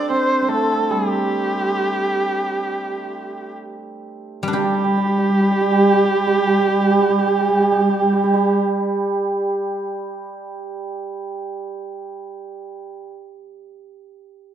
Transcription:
Already playing: D4
0.10 C4 C5
0.42 C4 C5
0.48 A3 A4
0.90 G3 G#4
1.10 G4
4.43 G3
4.48 D4
4.53 G3 G4
4.64 G3
4.74 G3
4.84 G3
4.97 G3
5.07 G3
5.18 G3
5.29 G3
5.41 G3
5.51 G3
5.61 G3
5.71 G3
5.83 G3
5.94 G3
6.04 G3
6.15 G3
6.27 G3
6.38 G3
6.47 G3
6.58 G3
6.68 G3
6.81 G3
6.90 G3
6.99 G3
7.10 G3
7.19 G3
7.27 G3
7.40 G3
7.48 G3
7.60 G3
7.72 G3
7.80 G3
7.89 G3
8.02 G3
8.13 G3
8.24 G3
8.33 G3

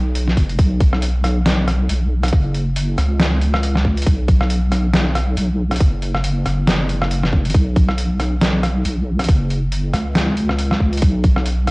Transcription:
Already playing: B1
0.15 closed hi-hat
0.28 snare
0.37 F#1, kick, closed hi-hat
0.49 closed hi-hat
0.59 B1, kick, closed hi-hat
0.80 kick, closed hi-hat
0.93 cross-stick
1.02 closed hi-hat
1.24 cross-stick, closed hi-hat
1.46 snare, closed hi-hat
1.68 cross-stick, closed hi-hat
1.89 B1, closed hi-hat
2.23 cross-stick, closed hi-hat
2.28 closed hi-hat
2.33 F#1, kick, closed hi-hat
2.54 closed hi-hat
2.76 closed hi-hat
2.98 C#2, cross-stick, closed hi-hat
3.20 snare, closed hi-hat
3.41 closed hi-hat
3.54 cross-stick
3.63 closed hi-hat
3.75 cross-stick, snare
3.85 kick
3.97 closed hi-hat
4.02 closed hi-hat
4.07 B1, kick, closed hi-hat
4.28 kick, closed hi-hat
4.41 cross-stick
4.50 closed hi-hat
4.72 cross-stick, closed hi-hat
4.94 snare, closed hi-hat
5.15 cross-stick, closed hi-hat
5.37 B1, closed hi-hat
5.71 cross-stick, closed hi-hat
5.76 closed hi-hat
5.80 F#1, kick, closed hi-hat
6.02 closed hi-hat
6.15 cross-stick
6.24 closed hi-hat
6.46 F#1, cross-stick, closed hi-hat
6.67 snare, closed hi-hat
6.89 closed hi-hat
7.02 cross-stick
7.11 closed hi-hat
7.23 cross-stick, snare
7.33 F#1, kick
7.45 closed hi-hat
7.50 closed hi-hat
7.54 B1, kick, closed hi-hat
7.76 kick, closed hi-hat
7.89 cross-stick
7.98 closed hi-hat
8.20 cross-stick, closed hi-hat
8.41 snare, closed hi-hat
8.63 cross-stick, closed hi-hat
8.85 B1, closed hi-hat
9.19 cross-stick, closed hi-hat
9.24 closed hi-hat
9.28 F#1, kick, closed hi-hat
9.50 closed hi-hat
9.72 closed hi-hat
9.93 C#2, cross-stick, closed hi-hat
10.15 snare, closed hi-hat
10.37 closed hi-hat
10.49 cross-stick
10.59 closed hi-hat
10.71 cross-stick, snare
10.80 kick
10.93 closed hi-hat
10.97 closed hi-hat
11.02 B1, kick, closed hi-hat
11.24 kick, closed hi-hat
11.36 cross-stick
11.46 closed hi-hat
11.67 cross-stick, closed hi-hat

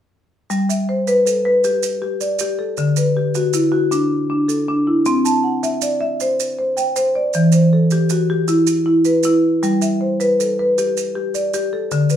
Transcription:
0.50 G3, maracas
0.69 E5, maracas
0.89 C5
1.07 B4, maracas
1.26 A4, maracas
1.45 B4
1.64 G4, maracas
1.83 maracas
2.02 G4
2.21 D5, maracas
2.39 G4, maracas
2.59 A4
2.77 D3, maracas
2.96 B4, maracas
3.17 G4
3.35 F#4, maracas
3.53 E4, maracas
3.72 F#4
3.91 D4, maracas
4.30 D4
4.48 A4, maracas
4.68 D4
4.87 E4
5.05 C4, maracas
5.25 A5, maracas
5.44 F#5
5.63 E5, maracas
5.82 D5, maracas
6.01 E5
6.20 C5, maracas
6.40 maracas
6.59 C5
6.77 G5, maracas
6.96 C5, maracas
7.15 D5
7.33 E3, maracas
7.52 C5, maracas
7.73 A4
7.91 G4, maracas
8.10 F#4, maracas
8.30 G4
8.48 E4, maracas
8.67 maracas
8.86 E4
9.05 B4, maracas
9.23 E4, maracas
9.63 G3, maracas
9.82 E5, maracas
10.01 C5
10.20 B4, maracas
10.40 A4, maracas
10.59 B4
10.78 G4, maracas
10.97 maracas
11.15 G4
11.35 D5, maracas
11.54 G4, maracas
11.73 A4
11.91 D3, maracas
12.10 B4, maracas

